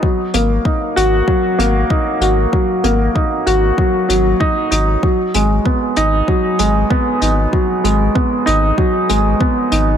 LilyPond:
<<
  \new Staff \with { instrumentName = "Upright piano" } { \time 4/4 \key dis \phrygian \tempo 4 = 96 fis8 ais8 dis'8 fis'8 fis8 ais8 dis'8 fis'8 | fis8 ais8 dis'8 fis'8 fis8 fis8 dis'8 dis'8 | fis8 gis8 b8 dis'8 fis8 gis8 b8 dis'8 | fis8 gis8 b8 dis'8 fis8 gis8 b8 dis'8 | }
  \new Staff \with { instrumentName = "Sub bass" } { \clef bass \time 4/4 \key dis \phrygian r8 gis,,8 r8 gis,,8 r8 gis,,8 r8 gis,,8 | r8 gis,,8 r8 gis,,8 r8 gis,,8 r8 gis,,8 | r8 gis,,8 r8 gis,,8 r8 gis,,8 r8 gis,,8 | r8 gis,,8 r8 gis,,8 r8 gis,,8 r8 gis,,8 | }
  \new DrumStaff \with { instrumentName = "Drums" } \drummode { \time 4/4 bd8 hh8 bd8 hh8 bd8 hh8 bd8 hh8 | bd8 hh8 bd8 hh8 bd8 hh8 bd8 hh8 | bd8 hh8 bd8 hh8 bd8 hh8 bd8 hh8 | bd8 hh8 bd8 hh8 bd8 hh8 bd8 hh8 | }
>>